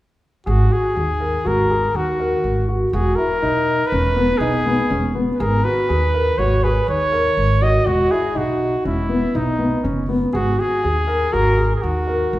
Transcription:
0.46 upright bass G#1, flugelhorn F#4, grand piano G#4
0.70 grand piano F#4, flugelhorn G#4
0.95 upright bass D#2, grand piano G#4
1.20 grand piano A#4
1.45 upright bass G#1, grand piano F#4, flugelhorn A#4
1.70 grand piano G#4
1.94 upright bass D#2, flugelhorn F#4
2.20 grand piano A#4
2.44 upright bass G#1
2.68 grand piano F#4
2.93 upright bass E1, grand piano F#4, flugelhorn G#4
3.16 grand piano E4, flugelhorn A#4
3.42 upright bass B1, grand piano D#4
3.87 flugelhorn B4
3.92 upright bass E1, grand piano C#4
4.16 grand piano B3
4.38 upright bass B1, grand piano D#4, flugelhorn G#4
4.66 grand piano B3
4.90 upright bass E1, grand piano C#4
5.15 grand piano B3
5.35 flugelhorn B4
5.40 upright bass G#1, grand piano G#4, flugelhorn A#4
5.64 grand piano F#4, flugelhorn B4
5.89 upright bass D#2, grand piano G#4
6.14 grand piano A#4
6.38 upright bass G#1, grand piano F#4, flugelhorn C#5
6.63 grand piano G#4, flugelhorn B4
6.88 upright bass D#2, flugelhorn C#5
7.12 grand piano A#4
7.37 upright bass G#1
7.62 grand piano F#4, flugelhorn D#5
7.86 upright bass E1, grand piano F#4, flugelhorn F#4
8.10 grand piano E4, flugelhorn G#4
8.35 upright bass B1, grand piano D#4, flugelhorn F#4
8.85 upright bass E1, grand piano C#4, flugelhorn E4
9.09 grand piano B3
9.35 upright bass B1, grand piano D#4, flugelhorn D#4
9.59 grand piano B3
9.83 upright bass F#1, grand piano C#4
10.09 grand piano B3
10.33 upright bass G#1, flugelhorn F#4, grand piano G#4
10.58 grand piano F#4, flugelhorn G#4
10.83 upright bass D#2, grand piano G#4
11.07 grand piano A#4
11.32 upright bass G#1, grand piano F#4, flugelhorn A#4
11.57 grand piano G#4
11.76 flugelhorn G#4
11.82 upright bass D#2, flugelhorn F#4
12.07 grand piano A#4
12.33 upright bass G#1

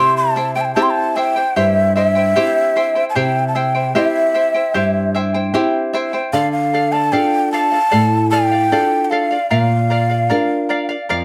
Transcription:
Already playing: nylon-string guitar C3, charango E4 G4 C5 E5 G5, quena C6
0.17 quena A5
0.36 charango E4 C5 E5 G5
0.55 charango E4 C5 G5, quena G5
0.61 quena G5 A5
0.75 nylon-string guitar C4 E4 G4, charango E4 G4 C5 E5 G5, quena A5
0.82 quena C6
0.90 quena A5
1.16 charango E4 C5 E5 G5, quena G5
1.36 charango E4 C5 G5
1.56 nylon-string guitar G2, charango E4 G4 C5 E5 G5, quena E5
1.96 charango E4 C5 E5 G5, quena E5
2.15 charango E4 C5 G5
2.36 nylon-string guitar C4 E4 G4, charango E4 G4 C5 E5 G5
2.76 charango E4 C5 E5 G5
2.95 charango E4 C5 G5
3.10 quena A5
3.15 nylon-string guitar C3, charango E4 G4 C5 E5 G5, quena G5
3.48 quena A5
3.55 charango E4 C5 E5 G5, quena G5
3.75 charango E4 C5 G5
3.95 nylon-string guitar C4 E4 G4, charango E4 G4 C5 E5 G5, quena E5
4.34 charango E4 C5 E5 G5
4.54 charango E4 C5 G5
4.74 nylon-string guitar G2, charango E4 G4 C5 E5 G5
5.15 charango E4 C5 E5 G5
5.34 charango E4 C5 G5
5.54 nylon-string guitar C4 E4 G4, charango E4 G4 C5 E5 G5
5.93 charango E4 C5 E5 G5
6.13 charango E4 C5 G5
6.33 nylon-string guitar D3, charango A4 D5 F5, quena F5
6.52 quena F5
6.74 charango A4 D5 F5
6.92 charango D5 F5, quena A5
7.12 nylon-string guitar D4 F4 A4, charango A4 D5 F5, quena G5
7.52 charango A4 D5 F5, quena A5
7.72 charango D5 F5
7.91 nylon-string guitar A2, charango A4 D5 F5
8.30 charango A4 D5 F5, quena G5
8.51 charango D5 F5
8.72 nylon-string guitar D4 F4 A4, charango A4 D5 F5
9.05 quena G5
9.10 charango A4 D5 F5, quena F5
9.31 charango D5 F5
9.50 nylon-string guitar A#2, charango A#4 D5 F5, quena F5
9.90 charango A#4 D5 F5
10.10 charango D5 F5
10.30 nylon-string guitar D4 F4 A#4, charango A#4 D5 F5
10.69 charango A#4 D5 F5
10.89 charango D5 F5
11.09 nylon-string guitar F2, charango A#4 D5 F5

